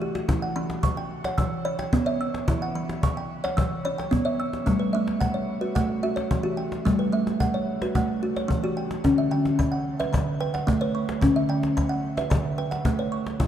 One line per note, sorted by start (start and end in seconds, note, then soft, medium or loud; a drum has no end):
0.00 0.22 E3 medium
0.00 0.27 G4 medium
0.15 0.40 F#4 medium
0.15 cajon slap soft
0.29 0.53 E3 medium
0.29 0.56 E4 medium
0.29 cajon bass medium
0.42 0.83 F#5 medium
0.42 cajon slap soft
0.56 1.29 E3 medium
0.56 0.97 B5 medium
0.70 cajon slap soft
0.83 1.10 C#6 medium
0.83 cajon bass medium
0.97 1.38 G5 medium
0.97 cajon slap soft
1.24 1.52 C#5 medium
1.24 1.66 F#5 medium
1.24 cajon slap soft
1.38 1.87 E3 medium
1.38 1.79 E6 medium
1.38 cajon bass medium
1.65 1.93 C#5 medium
1.65 2.06 B5 medium
1.79 2.20 G5 medium
1.79 cajon slap soft
1.93 2.41 B3 medium
1.93 cajon bass medium
2.06 2.34 C#5 medium
2.06 2.48 E5 medium
2.21 2.62 E6 medium
2.34 cajon slap soft
2.48 2.72 E3 medium
2.48 2.75 E4 medium
2.48 cajon bass medium
2.62 3.03 F#5 medium
2.75 3.48 E3 medium
2.75 3.16 B5 medium
2.89 cajon slap soft
3.03 3.30 C#6 medium
3.03 cajon bass medium
3.17 3.58 G5 medium
3.44 3.71 C#5 medium
3.44 3.85 F#5 medium
3.44 cajon slap soft
3.57 4.06 E3 medium
3.57 3.98 E6 medium
3.57 cajon bass medium
3.85 4.12 C#5 medium
3.85 4.26 B5 medium
3.98 4.39 G5 medium
3.98 cajon slap soft
4.11 4.60 B3 medium
4.11 cajon bass soft
4.25 4.53 C#5 medium
4.25 4.67 E5 medium
4.40 4.81 E6 medium
4.53 cajon slap soft
4.66 4.94 G3 medium
4.66 4.91 A3 medium
4.66 cajon bass soft
4.79 5.21 B4 medium
4.79 cajon slap soft
4.93 5.67 A3 medium
4.93 5.35 E5 medium
5.08 cajon slap soft
5.21 5.48 F#5 medium
5.21 cajon bass soft
5.34 5.76 C#5 medium
5.34 cajon slap soft
5.61 5.89 F#4 medium
5.61 6.03 B4 medium
5.75 6.25 A3 medium
5.75 6.17 F#5 medium
5.75 cajon bass soft
6.03 6.31 F#4 medium
6.03 6.44 E5 medium
6.16 6.58 C#5 medium
6.16 cajon slap soft
6.31 6.79 E3 medium
6.31 cajon bass soft
6.43 6.71 F#4 medium
6.43 6.85 G4 medium
6.57 6.99 G5 medium
6.72 cajon slap soft
6.85 7.13 G3 medium
6.85 7.10 A3 medium
6.85 cajon bass soft
6.99 7.40 B4 medium
6.99 cajon slap soft
7.12 7.85 A3 medium
7.12 7.54 E5 medium
7.27 cajon slap soft
7.40 7.68 F#5 medium
7.40 cajon bass soft
7.54 7.95 C#5 medium
7.54 cajon slap soft
7.82 8.09 F#4 medium
7.82 8.22 B4 medium
7.82 cajon slap soft
7.95 8.43 A3 medium
7.95 8.36 F#5 medium
7.95 cajon bass soft
8.23 8.50 F#4 medium
8.36 8.77 C#5 medium
8.36 cajon slap soft
8.48 8.97 E3 medium
8.48 cajon bass soft
8.64 8.91 F#4 medium
8.64 9.04 G4 medium
8.77 9.18 G5 medium
8.91 cajon slap soft
9.04 9.28 D3 medium
9.04 9.32 C#4 medium
9.04 cajon bass soft
9.18 9.59 E5 medium
9.18 cajon slap soft
9.31 10.04 D3 medium
9.31 9.72 G5 medium
9.45 cajon slap soft
9.59 9.86 B5 medium
9.59 cajon bass soft
9.72 10.13 F#5 medium
9.72 cajon slap soft
9.99 10.27 B4 medium
9.99 10.40 E5 medium
9.99 cajon slap soft
10.13 10.61 D3 medium
10.13 10.54 B5 medium
10.13 cajon bass medium
10.40 10.68 B4 medium
10.40 10.81 G5 medium
10.54 10.95 F#5 medium
10.54 cajon slap soft
10.67 11.16 A3 medium
10.67 cajon bass medium
10.81 11.08 B4 medium
10.81 11.22 C#5 medium
10.95 11.36 C#6 medium
11.09 cajon slap soft
11.22 11.46 D3 medium
11.22 11.50 C#4 medium
11.22 cajon bass medium
11.36 11.77 E5 medium
11.49 12.21 D3 medium
11.49 11.90 G5 medium
11.63 cajon slap soft
11.77 12.04 B5 medium
11.77 cajon bass medium
11.77 cajon slap soft
11.89 12.31 F#5 medium
11.89 cajon slap soft
12.05 cajon slap soft
12.17 12.45 B4 medium
12.17 12.58 E5 medium
12.17 cajon slap soft
12.30 12.79 D3 medium
12.30 12.71 B5 medium
12.30 cajon bass medium
12.45 cajon slap soft
12.58 12.85 B4 medium
12.58 12.99 G5 medium
12.58 cajon slap soft
12.71 13.12 F#5 medium
12.71 cajon slap soft
12.85 13.34 A3 medium
12.85 cajon bass medium
12.99 13.26 B4 medium
12.99 13.40 C#5 medium
13.12 13.47 C#6 medium
13.27 cajon slap soft
13.40 13.47 E3 medium
13.40 13.47 E4 medium
13.40 cajon bass medium